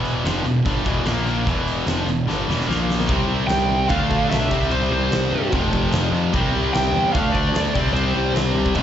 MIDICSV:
0, 0, Header, 1, 5, 480
1, 0, Start_track
1, 0, Tempo, 405132
1, 1739, Time_signature, 4, 2, 24, 8
1, 10458, End_track
2, 0, Start_track
2, 0, Title_t, "Lead electric guitar"
2, 0, Program_c, 0, 29
2, 4112, Note_on_c, 0, 79, 107
2, 4609, Note_off_c, 0, 79, 0
2, 4614, Note_on_c, 0, 77, 104
2, 5097, Note_off_c, 0, 77, 0
2, 5102, Note_on_c, 0, 76, 93
2, 5572, Note_on_c, 0, 72, 89
2, 5596, Note_off_c, 0, 76, 0
2, 5824, Note_off_c, 0, 72, 0
2, 5839, Note_on_c, 0, 72, 82
2, 6501, Note_off_c, 0, 72, 0
2, 7979, Note_on_c, 0, 79, 107
2, 8439, Note_off_c, 0, 79, 0
2, 8444, Note_on_c, 0, 77, 101
2, 8673, Note_on_c, 0, 74, 103
2, 8697, Note_off_c, 0, 77, 0
2, 9398, Note_off_c, 0, 74, 0
2, 9403, Note_on_c, 0, 72, 83
2, 9853, Note_off_c, 0, 72, 0
2, 10458, End_track
3, 0, Start_track
3, 0, Title_t, "Distorted electric guitar"
3, 0, Program_c, 1, 30
3, 0, Note_on_c, 1, 40, 98
3, 0, Note_on_c, 1, 47, 96
3, 0, Note_on_c, 1, 52, 93
3, 284, Note_off_c, 1, 40, 0
3, 289, Note_on_c, 1, 41, 88
3, 290, Note_off_c, 1, 47, 0
3, 294, Note_off_c, 1, 52, 0
3, 299, Note_on_c, 1, 53, 98
3, 300, Note_on_c, 1, 48, 96
3, 525, Note_off_c, 1, 41, 0
3, 525, Note_off_c, 1, 48, 0
3, 530, Note_off_c, 1, 53, 0
3, 530, Note_on_c, 1, 47, 65
3, 531, Note_on_c, 1, 40, 62
3, 725, Note_off_c, 1, 47, 0
3, 726, Note_off_c, 1, 40, 0
3, 776, Note_on_c, 1, 43, 89
3, 777, Note_on_c, 1, 50, 89
3, 783, Note_on_c, 1, 55, 96
3, 1010, Note_off_c, 1, 43, 0
3, 1010, Note_off_c, 1, 50, 0
3, 1013, Note_off_c, 1, 55, 0
3, 1016, Note_on_c, 1, 40, 85
3, 1018, Note_on_c, 1, 47, 97
3, 1026, Note_on_c, 1, 52, 96
3, 1247, Note_off_c, 1, 47, 0
3, 1247, Note_on_c, 1, 46, 94
3, 1250, Note_off_c, 1, 40, 0
3, 1250, Note_off_c, 1, 52, 0
3, 1250, Note_on_c, 1, 53, 88
3, 1264, Note_on_c, 1, 58, 95
3, 1718, Note_on_c, 1, 40, 93
3, 1725, Note_off_c, 1, 46, 0
3, 1729, Note_off_c, 1, 53, 0
3, 1730, Note_on_c, 1, 47, 106
3, 1734, Note_on_c, 1, 52, 106
3, 1735, Note_off_c, 1, 58, 0
3, 2203, Note_off_c, 1, 40, 0
3, 2209, Note_off_c, 1, 47, 0
3, 2211, Note_off_c, 1, 52, 0
3, 2222, Note_on_c, 1, 41, 83
3, 2225, Note_on_c, 1, 48, 88
3, 2232, Note_on_c, 1, 53, 102
3, 2452, Note_off_c, 1, 41, 0
3, 2457, Note_off_c, 1, 48, 0
3, 2457, Note_on_c, 1, 40, 59
3, 2460, Note_off_c, 1, 53, 0
3, 2465, Note_on_c, 1, 47, 68
3, 2652, Note_off_c, 1, 40, 0
3, 2656, Note_off_c, 1, 47, 0
3, 2689, Note_on_c, 1, 43, 88
3, 2695, Note_on_c, 1, 50, 84
3, 2697, Note_on_c, 1, 55, 91
3, 2929, Note_off_c, 1, 43, 0
3, 2932, Note_off_c, 1, 50, 0
3, 2933, Note_off_c, 1, 55, 0
3, 2934, Note_on_c, 1, 40, 86
3, 2940, Note_on_c, 1, 47, 89
3, 2946, Note_on_c, 1, 52, 98
3, 3155, Note_off_c, 1, 47, 0
3, 3159, Note_on_c, 1, 46, 92
3, 3160, Note_off_c, 1, 52, 0
3, 3165, Note_on_c, 1, 53, 88
3, 3169, Note_on_c, 1, 58, 93
3, 3172, Note_off_c, 1, 40, 0
3, 3640, Note_off_c, 1, 46, 0
3, 3645, Note_on_c, 1, 48, 97
3, 3647, Note_off_c, 1, 53, 0
3, 3649, Note_off_c, 1, 58, 0
3, 3664, Note_on_c, 1, 55, 99
3, 3673, Note_on_c, 1, 60, 111
3, 4595, Note_off_c, 1, 48, 0
3, 4600, Note_on_c, 1, 50, 91
3, 4609, Note_off_c, 1, 55, 0
3, 4614, Note_off_c, 1, 60, 0
3, 4617, Note_on_c, 1, 57, 84
3, 4627, Note_on_c, 1, 62, 98
3, 5316, Note_off_c, 1, 50, 0
3, 5324, Note_on_c, 1, 48, 92
3, 5325, Note_off_c, 1, 57, 0
3, 5330, Note_off_c, 1, 62, 0
3, 5339, Note_on_c, 1, 55, 100
3, 5358, Note_on_c, 1, 60, 100
3, 6516, Note_off_c, 1, 48, 0
3, 6524, Note_off_c, 1, 55, 0
3, 6533, Note_off_c, 1, 60, 0
3, 6533, Note_on_c, 1, 41, 91
3, 6552, Note_on_c, 1, 48, 89
3, 6558, Note_on_c, 1, 53, 98
3, 7479, Note_off_c, 1, 48, 0
3, 7480, Note_off_c, 1, 41, 0
3, 7492, Note_off_c, 1, 53, 0
3, 7493, Note_on_c, 1, 48, 99
3, 7510, Note_on_c, 1, 55, 110
3, 7523, Note_on_c, 1, 60, 109
3, 8439, Note_off_c, 1, 48, 0
3, 8447, Note_off_c, 1, 55, 0
3, 8448, Note_on_c, 1, 50, 87
3, 8454, Note_off_c, 1, 60, 0
3, 8464, Note_on_c, 1, 57, 103
3, 8479, Note_on_c, 1, 62, 101
3, 9156, Note_off_c, 1, 50, 0
3, 9164, Note_off_c, 1, 57, 0
3, 9171, Note_off_c, 1, 62, 0
3, 9173, Note_on_c, 1, 48, 94
3, 9186, Note_on_c, 1, 55, 94
3, 9208, Note_on_c, 1, 60, 102
3, 10357, Note_off_c, 1, 48, 0
3, 10363, Note_on_c, 1, 41, 98
3, 10364, Note_off_c, 1, 55, 0
3, 10374, Note_off_c, 1, 60, 0
3, 10382, Note_on_c, 1, 48, 92
3, 10390, Note_on_c, 1, 53, 88
3, 10458, Note_off_c, 1, 41, 0
3, 10458, Note_off_c, 1, 48, 0
3, 10458, Note_off_c, 1, 53, 0
3, 10458, End_track
4, 0, Start_track
4, 0, Title_t, "Picked electric bass"
4, 0, Program_c, 2, 34
4, 0, Note_on_c, 2, 28, 91
4, 258, Note_off_c, 2, 28, 0
4, 290, Note_on_c, 2, 29, 98
4, 516, Note_off_c, 2, 29, 0
4, 525, Note_on_c, 2, 28, 79
4, 754, Note_off_c, 2, 28, 0
4, 768, Note_on_c, 2, 31, 87
4, 996, Note_off_c, 2, 31, 0
4, 1010, Note_on_c, 2, 28, 87
4, 1237, Note_off_c, 2, 28, 0
4, 1252, Note_on_c, 2, 34, 91
4, 1703, Note_off_c, 2, 34, 0
4, 1739, Note_on_c, 2, 28, 86
4, 2187, Note_off_c, 2, 28, 0
4, 2209, Note_on_c, 2, 29, 94
4, 2419, Note_off_c, 2, 29, 0
4, 2426, Note_on_c, 2, 28, 74
4, 2666, Note_off_c, 2, 28, 0
4, 2671, Note_on_c, 2, 31, 81
4, 2910, Note_off_c, 2, 31, 0
4, 2933, Note_on_c, 2, 28, 82
4, 3161, Note_off_c, 2, 28, 0
4, 3176, Note_on_c, 2, 34, 89
4, 3626, Note_off_c, 2, 34, 0
4, 3662, Note_on_c, 2, 36, 89
4, 3860, Note_off_c, 2, 36, 0
4, 3867, Note_on_c, 2, 36, 96
4, 4089, Note_off_c, 2, 36, 0
4, 4116, Note_on_c, 2, 36, 95
4, 4334, Note_off_c, 2, 36, 0
4, 4351, Note_on_c, 2, 36, 91
4, 4570, Note_off_c, 2, 36, 0
4, 4614, Note_on_c, 2, 38, 91
4, 4824, Note_off_c, 2, 38, 0
4, 4863, Note_on_c, 2, 38, 83
4, 5061, Note_off_c, 2, 38, 0
4, 5068, Note_on_c, 2, 35, 96
4, 5339, Note_off_c, 2, 35, 0
4, 5339, Note_on_c, 2, 36, 85
4, 5546, Note_off_c, 2, 36, 0
4, 5567, Note_on_c, 2, 36, 100
4, 5779, Note_off_c, 2, 36, 0
4, 5816, Note_on_c, 2, 36, 92
4, 6024, Note_off_c, 2, 36, 0
4, 6059, Note_on_c, 2, 36, 98
4, 6265, Note_off_c, 2, 36, 0
4, 6301, Note_on_c, 2, 43, 90
4, 6506, Note_off_c, 2, 43, 0
4, 6537, Note_on_c, 2, 29, 96
4, 6744, Note_off_c, 2, 29, 0
4, 6783, Note_on_c, 2, 29, 86
4, 6987, Note_off_c, 2, 29, 0
4, 7010, Note_on_c, 2, 29, 98
4, 7219, Note_off_c, 2, 29, 0
4, 7241, Note_on_c, 2, 41, 97
4, 7503, Note_on_c, 2, 36, 99
4, 7521, Note_off_c, 2, 41, 0
4, 7706, Note_off_c, 2, 36, 0
4, 7727, Note_on_c, 2, 36, 98
4, 7937, Note_off_c, 2, 36, 0
4, 7984, Note_on_c, 2, 36, 97
4, 8186, Note_off_c, 2, 36, 0
4, 8202, Note_on_c, 2, 40, 87
4, 8414, Note_off_c, 2, 40, 0
4, 8470, Note_on_c, 2, 38, 94
4, 8669, Note_off_c, 2, 38, 0
4, 8699, Note_on_c, 2, 38, 91
4, 8903, Note_off_c, 2, 38, 0
4, 8928, Note_on_c, 2, 38, 100
4, 9136, Note_off_c, 2, 38, 0
4, 9178, Note_on_c, 2, 36, 90
4, 9382, Note_off_c, 2, 36, 0
4, 9395, Note_on_c, 2, 36, 92
4, 9608, Note_off_c, 2, 36, 0
4, 9656, Note_on_c, 2, 36, 94
4, 9860, Note_off_c, 2, 36, 0
4, 9878, Note_on_c, 2, 36, 91
4, 10090, Note_off_c, 2, 36, 0
4, 10126, Note_on_c, 2, 36, 89
4, 10334, Note_off_c, 2, 36, 0
4, 10375, Note_on_c, 2, 29, 93
4, 10458, Note_off_c, 2, 29, 0
4, 10458, End_track
5, 0, Start_track
5, 0, Title_t, "Drums"
5, 58, Note_on_c, 9, 42, 63
5, 177, Note_off_c, 9, 42, 0
5, 303, Note_on_c, 9, 42, 82
5, 317, Note_on_c, 9, 38, 110
5, 422, Note_off_c, 9, 42, 0
5, 436, Note_off_c, 9, 38, 0
5, 544, Note_on_c, 9, 42, 64
5, 663, Note_off_c, 9, 42, 0
5, 776, Note_on_c, 9, 42, 81
5, 779, Note_on_c, 9, 36, 101
5, 895, Note_off_c, 9, 42, 0
5, 897, Note_off_c, 9, 36, 0
5, 1015, Note_on_c, 9, 42, 64
5, 1018, Note_on_c, 9, 36, 101
5, 1134, Note_off_c, 9, 42, 0
5, 1137, Note_off_c, 9, 36, 0
5, 1251, Note_on_c, 9, 42, 87
5, 1265, Note_on_c, 9, 38, 104
5, 1369, Note_off_c, 9, 42, 0
5, 1383, Note_off_c, 9, 38, 0
5, 1498, Note_on_c, 9, 42, 62
5, 1617, Note_off_c, 9, 42, 0
5, 1741, Note_on_c, 9, 36, 96
5, 1741, Note_on_c, 9, 42, 87
5, 1860, Note_off_c, 9, 36, 0
5, 1860, Note_off_c, 9, 42, 0
5, 1984, Note_on_c, 9, 42, 66
5, 2103, Note_off_c, 9, 42, 0
5, 2215, Note_on_c, 9, 42, 92
5, 2230, Note_on_c, 9, 38, 100
5, 2334, Note_off_c, 9, 42, 0
5, 2348, Note_off_c, 9, 38, 0
5, 2469, Note_on_c, 9, 42, 65
5, 2587, Note_off_c, 9, 42, 0
5, 2722, Note_on_c, 9, 38, 58
5, 2841, Note_off_c, 9, 38, 0
5, 2969, Note_on_c, 9, 38, 72
5, 3087, Note_off_c, 9, 38, 0
5, 3090, Note_on_c, 9, 38, 65
5, 3209, Note_off_c, 9, 38, 0
5, 3210, Note_on_c, 9, 38, 78
5, 3328, Note_off_c, 9, 38, 0
5, 3441, Note_on_c, 9, 38, 89
5, 3556, Note_off_c, 9, 38, 0
5, 3556, Note_on_c, 9, 38, 82
5, 3657, Note_on_c, 9, 49, 58
5, 3662, Note_on_c, 9, 36, 108
5, 3674, Note_off_c, 9, 38, 0
5, 3776, Note_off_c, 9, 49, 0
5, 3780, Note_off_c, 9, 36, 0
5, 4138, Note_on_c, 9, 49, 60
5, 4152, Note_on_c, 9, 38, 115
5, 4256, Note_off_c, 9, 49, 0
5, 4270, Note_off_c, 9, 38, 0
5, 4612, Note_on_c, 9, 49, 60
5, 4623, Note_on_c, 9, 36, 115
5, 4731, Note_off_c, 9, 49, 0
5, 4742, Note_off_c, 9, 36, 0
5, 4866, Note_on_c, 9, 36, 91
5, 4985, Note_off_c, 9, 36, 0
5, 5111, Note_on_c, 9, 49, 64
5, 5125, Note_on_c, 9, 38, 113
5, 5229, Note_off_c, 9, 49, 0
5, 5243, Note_off_c, 9, 38, 0
5, 5346, Note_on_c, 9, 36, 109
5, 5359, Note_on_c, 9, 38, 31
5, 5464, Note_off_c, 9, 36, 0
5, 5477, Note_off_c, 9, 38, 0
5, 5477, Note_on_c, 9, 38, 33
5, 5584, Note_on_c, 9, 49, 66
5, 5595, Note_off_c, 9, 38, 0
5, 5703, Note_off_c, 9, 49, 0
5, 6066, Note_on_c, 9, 49, 69
5, 6081, Note_on_c, 9, 38, 118
5, 6185, Note_off_c, 9, 49, 0
5, 6199, Note_off_c, 9, 38, 0
5, 6542, Note_on_c, 9, 49, 65
5, 6550, Note_on_c, 9, 36, 118
5, 6661, Note_off_c, 9, 49, 0
5, 6669, Note_off_c, 9, 36, 0
5, 6790, Note_on_c, 9, 36, 87
5, 6908, Note_off_c, 9, 36, 0
5, 7019, Note_on_c, 9, 49, 64
5, 7033, Note_on_c, 9, 38, 111
5, 7138, Note_off_c, 9, 49, 0
5, 7152, Note_off_c, 9, 38, 0
5, 7287, Note_on_c, 9, 38, 33
5, 7405, Note_off_c, 9, 38, 0
5, 7504, Note_on_c, 9, 49, 60
5, 7511, Note_on_c, 9, 36, 108
5, 7622, Note_off_c, 9, 49, 0
5, 7629, Note_off_c, 9, 36, 0
5, 7991, Note_on_c, 9, 49, 61
5, 8005, Note_on_c, 9, 38, 119
5, 8109, Note_off_c, 9, 49, 0
5, 8123, Note_off_c, 9, 38, 0
5, 8468, Note_on_c, 9, 49, 61
5, 8470, Note_on_c, 9, 36, 116
5, 8586, Note_off_c, 9, 49, 0
5, 8589, Note_off_c, 9, 36, 0
5, 8707, Note_on_c, 9, 36, 86
5, 8825, Note_off_c, 9, 36, 0
5, 8944, Note_on_c, 9, 49, 60
5, 8959, Note_on_c, 9, 38, 115
5, 9063, Note_off_c, 9, 49, 0
5, 9077, Note_off_c, 9, 38, 0
5, 9187, Note_on_c, 9, 36, 105
5, 9207, Note_on_c, 9, 38, 32
5, 9306, Note_off_c, 9, 36, 0
5, 9325, Note_off_c, 9, 38, 0
5, 9325, Note_on_c, 9, 38, 33
5, 9434, Note_on_c, 9, 49, 65
5, 9444, Note_off_c, 9, 38, 0
5, 9552, Note_off_c, 9, 49, 0
5, 9903, Note_on_c, 9, 49, 67
5, 9917, Note_on_c, 9, 38, 115
5, 10022, Note_off_c, 9, 49, 0
5, 10036, Note_off_c, 9, 38, 0
5, 10258, Note_on_c, 9, 36, 77
5, 10365, Note_on_c, 9, 49, 65
5, 10374, Note_off_c, 9, 36, 0
5, 10374, Note_on_c, 9, 36, 95
5, 10458, Note_off_c, 9, 36, 0
5, 10458, Note_off_c, 9, 49, 0
5, 10458, End_track
0, 0, End_of_file